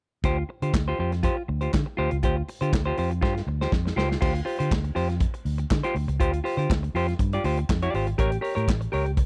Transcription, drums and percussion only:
0.24 kick, closed hi-hat
0.62 closed hi-hat
0.74 kick, snare, clap, closed hi-hat
1.12 snare, closed hi-hat
1.23 kick, closed hi-hat
1.61 closed hi-hat
1.73 kick, snare, clap, closed hi-hat
2.11 closed hi-hat
2.23 kick, closed hi-hat
2.49 open hi-hat
2.62 closed hi-hat
2.73 kick, snare, clap, closed hi-hat
2.98 open hi-hat
3.12 closed hi-hat
3.22 kick, snare
3.37 snare
3.61 snare
3.72 kick, snare
3.87 snare
3.98 snare
4.11 snare
4.22 kick, crash
4.35 closed hi-hat
4.47 open hi-hat
4.60 closed hi-hat
4.71 kick, snare, clap
4.85 closed hi-hat
4.96 open hi-hat
5.10 snare, closed hi-hat
5.20 kick, closed hi-hat
5.34 closed hi-hat
5.46 open hi-hat
5.58 closed hi-hat
5.71 kick, snare, clap
5.84 closed hi-hat
5.96 open hi-hat
6.09 closed hi-hat
6.20 kick, closed hi-hat
6.34 closed hi-hat
6.46 open hi-hat
6.59 closed hi-hat
6.70 kick, snare, clap
6.84 closed hi-hat
6.96 open hi-hat
7.09 snare, closed hi-hat
7.19 kick, closed hi-hat
7.33 closed hi-hat
7.44 open hi-hat
7.57 closed hi-hat
7.69 kick, snare, clap
7.82 closed hi-hat
7.94 open hi-hat
8.07 closed hi-hat
8.19 kick, closed hi-hat
8.32 closed hi-hat
8.44 open hi-hat
8.58 closed hi-hat
8.68 kick, snare, clap
8.82 closed hi-hat
8.93 open hi-hat
9.06 closed hi-hat
9.17 kick, closed hi-hat

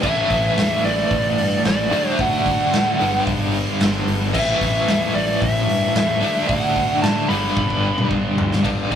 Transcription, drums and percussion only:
0.03 kick, crash
0.30 kick, open hi-hat
0.57 snare, open hi-hat
0.84 open hi-hat
1.11 kick, open hi-hat
1.38 open hi-hat
1.65 snare, open hi-hat
1.92 open hi-hat
2.19 kick, open hi-hat
2.46 kick, open hi-hat
2.73 snare, open hi-hat
3.00 open hi-hat
3.27 kick, open hi-hat
3.54 open hi-hat
3.80 snare, open hi-hat
4.08 open hi-hat
4.35 kick, crash
4.61 kick, open hi-hat
4.88 snare, open hi-hat
5.15 open hi-hat
5.42 kick, open hi-hat
5.69 open hi-hat
5.95 snare, open hi-hat
6.22 open hi-hat
6.49 kick, open hi-hat
6.76 kick, open hi-hat
7.03 snare, open hi-hat
7.30 open hi-hat
7.57 kick
7.70 kick
7.98 mid tom
8.11 kick
8.38 floor tom
8.52 snare
8.65 kick, ride
8.92 kick, ride

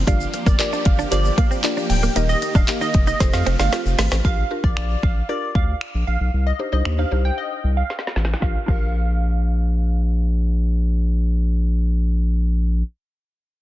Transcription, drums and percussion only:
0.07 kick, closed hi-hat, shaker
0.20 shaker
0.33 closed hi-hat, shaker
0.46 kick, shaker
0.60 clap, closed hi-hat, shaker
0.73 shaker
0.85 kick, closed hi-hat
0.99 shaker
1.12 closed hi-hat, shaker
1.25 shaker
1.38 kick, closed hi-hat
1.51 shaker
1.64 clap, closed hi-hat, shaker
1.77 shaker
1.90 open hi-hat, shaker
2.03 shaker
2.16 closed hi-hat, shaker
2.29 shaker
2.42 closed hi-hat, shaker
2.55 kick, shaker
2.68 clap, closed hi-hat, shaker
2.81 shaker
2.94 kick, closed hi-hat
3.07 shaker
3.20 kick, snare, closed hi-hat, shaker
3.33 snare, shaker
3.47 closed hi-hat
3.59 snare, shaker
3.72 snare, closed hi-hat, shaker
3.86 shaker
3.98 snare, open hi-hat, shaker
4.12 snare, shaker
4.25 kick
4.64 kick
4.77 finger snap
5.03 kick
5.55 kick
5.81 finger snap
6.85 finger snap
7.90 snare
7.99 snare
8.07 snare
8.16 snare
8.25 snare
8.34 snare
8.42 kick, snare
8.68 kick, crash

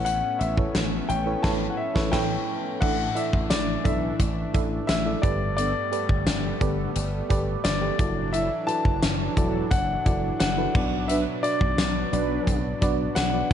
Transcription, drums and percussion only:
0.06 closed hi-hat
0.41 closed hi-hat
0.57 kick
0.75 snare, closed hi-hat
1.10 closed hi-hat
1.44 kick, snare, crash
1.96 kick, snare
2.13 kick, snare, crash
2.82 kick, crash
3.17 closed hi-hat
3.33 kick
3.50 snare, closed hi-hat, tambourine
3.85 kick, closed hi-hat
4.20 kick, closed hi-hat
4.54 kick, closed hi-hat
4.89 snare, closed hi-hat, tambourine
5.23 kick, closed hi-hat
5.58 closed hi-hat
5.93 closed hi-hat
6.09 kick
6.27 snare, closed hi-hat, tambourine
6.61 kick, closed hi-hat
6.96 closed hi-hat
7.30 kick, closed hi-hat
7.65 snare, closed hi-hat, tambourine
7.99 kick, closed hi-hat
8.34 closed hi-hat
8.69 closed hi-hat
8.85 kick
9.03 snare, closed hi-hat, tambourine
9.37 kick, closed hi-hat
9.71 kick, closed hi-hat
10.06 kick, closed hi-hat
10.40 snare, closed hi-hat, tambourine
10.75 kick, crash
11.09 closed hi-hat
11.44 closed hi-hat
11.61 kick
11.78 snare, closed hi-hat, tambourine
12.13 closed hi-hat
12.47 kick, closed hi-hat
12.82 kick, closed hi-hat
13.16 snare, closed hi-hat, tambourine

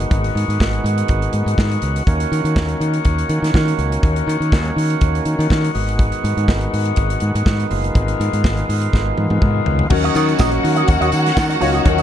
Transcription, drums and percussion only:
0.00 closed hi-hat
0.11 kick, closed hi-hat
0.24 closed hi-hat
0.37 closed hi-hat
0.50 closed hi-hat
0.60 kick, snare
0.73 closed hi-hat
0.86 closed hi-hat
0.98 closed hi-hat
1.08 kick, closed hi-hat
1.22 closed hi-hat
1.33 closed hi-hat
1.48 closed hi-hat
1.58 kick, snare
1.71 closed hi-hat
1.82 closed hi-hat
1.96 closed hi-hat
2.07 kick, closed hi-hat
2.20 closed hi-hat
2.33 closed hi-hat
2.45 closed hi-hat
2.56 kick, snare
2.68 closed hi-hat
2.81 closed hi-hat
2.94 closed hi-hat
3.05 kick, closed hi-hat
3.18 closed hi-hat
3.29 closed hi-hat
3.44 snare, closed hi-hat
3.54 kick, snare
3.68 closed hi-hat
3.79 closed hi-hat
3.92 closed hi-hat
4.03 kick, closed hi-hat
4.16 closed hi-hat
4.29 closed hi-hat
4.42 closed hi-hat
4.52 kick, snare
4.65 closed hi-hat
4.78 open hi-hat
4.90 closed hi-hat
5.01 kick, closed hi-hat
5.15 closed hi-hat
5.25 closed hi-hat
5.40 closed hi-hat
5.50 kick, snare
5.64 closed hi-hat
5.75 open hi-hat
5.89 closed hi-hat
5.99 kick, closed hi-hat
6.12 closed hi-hat
6.25 closed hi-hat
6.38 closed hi-hat
6.48 kick, snare
6.61 closed hi-hat
6.74 open hi-hat
6.85 closed hi-hat
6.96 kick, closed hi-hat
7.10 closed hi-hat
7.20 closed hi-hat
7.36 closed hi-hat
7.46 kick, snare
7.60 closed hi-hat
7.71 open hi-hat
7.84 closed hi-hat
7.95 kick, closed hi-hat
8.08 closed hi-hat
8.21 closed hi-hat
8.33 closed hi-hat
8.44 kick, snare
8.57 closed hi-hat
8.70 open hi-hat
8.82 closed hi-hat
8.93 kick, snare
9.18 high tom
9.30 high tom
9.42 kick, mid tom
9.66 floor tom
9.79 floor tom
9.90 kick, crash
10.03 closed hi-hat
10.15 closed hi-hat, tambourine
10.29 closed hi-hat
10.39 kick, snare, tambourine
10.51 closed hi-hat
10.65 open hi-hat, tambourine
10.76 closed hi-hat
10.88 kick, closed hi-hat, tambourine
11.02 closed hi-hat
11.12 closed hi-hat, tambourine
11.26 snare, closed hi-hat
11.37 kick, snare, tambourine
11.50 closed hi-hat
11.61 open hi-hat, tambourine
11.75 closed hi-hat
11.85 kick, closed hi-hat
11.98 closed hi-hat

